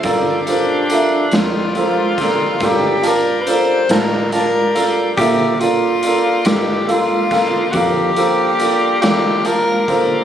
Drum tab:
HH |xxxxxxxxxxxx|xxxxxxxxxxxx|
SD |---o-oo--o--|---o-o---o--|
BD |o----oo-----|o----oo----o|